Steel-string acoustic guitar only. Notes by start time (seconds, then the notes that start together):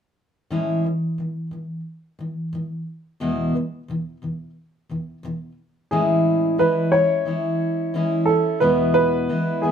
0.51 A2 E3 G#3 C#4 E4
0.84 A2 E3
1.18 A2 E3
1.51 A2 E3
2.19 A2 E3
2.53 A2 E3
3.20 E2 B2 E3 G#3 B3 E4
3.55 E2 B2 E3
3.88 E2 B2 E3
4.22 E2 B2 E3
4.89 E2 B2 E3
5.23 E2 B2 E3
5.91 A2 E3 G#3 C#4 E4
6.58 E3 G#3 C#4 E4
6.92 G#3 C#4 E4
7.25 E3 G#3 C#4 E4
7.94 E3 G#3 C#4 E4
8.27 C#4 E4
8.61 E2 B2 E3 G#3 B3 E4
9.29 E3 G#3 B3 E4
9.63 E3 G#3 B3 E4